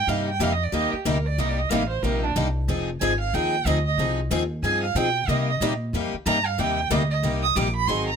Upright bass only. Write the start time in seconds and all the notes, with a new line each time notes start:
0.07 G2
0.40 F2
0.72 D#2
0.93 muted upright bass stroke
1.05 D2
1.38 C2
1.70 A1
2.03 A#1
2.36 C2
2.68 F1
3.01 G#1
3.33 D#2
3.65 D2
3.98 C2
4.30 D#2
4.63 G2
4.95 B2
5.28 C3
5.60 A#2
5.93 F2
6.14 muted upright bass stroke
6.26 G2
6.58 D#2
6.90 D2
7.23 C2
7.56 A#1
7.88 G#1